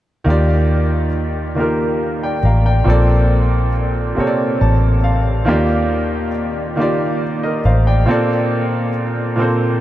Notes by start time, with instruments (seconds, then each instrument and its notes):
0.24 fingered electric bass D#2, grand piano D#3 A#3 F4
0.29 grand piano G4 D5
1.55 grand piano D#3 A#3 F4
1.59 grand piano G4 A#4
2.23 grand piano D5 G5
2.43 fingered electric bass A1, grand piano F5 A#5
2.66 grand piano D5 G5
2.84 fingered electric bass A#1, grand piano A#2 A#3 C4
2.89 grand piano A4 D5
4.15 grand piano C3 A#3 C4, muted fingered electric bass stroke
4.19 grand piano A4 C#5
4.27 grand piano D5
4.61 fingered electric bass A1, grand piano A5
5.04 grand piano F5
5.45 fingered electric bass D#2, grand piano D#3 A#3 F4 G4
5.50 grand piano D5
6.76 grand piano D#3 A#3 F4
6.80 grand piano G4 D5
7.43 grand piano A#4 D#5
7.65 fingered electric bass A1, grand piano C5 F5
7.87 grand piano D5 G5
8.06 grand piano A#2 A#3 C4
8.10 grand piano A4 D5
9.36 grand piano A#2 A#3 C4
9.40 grand piano A4 C5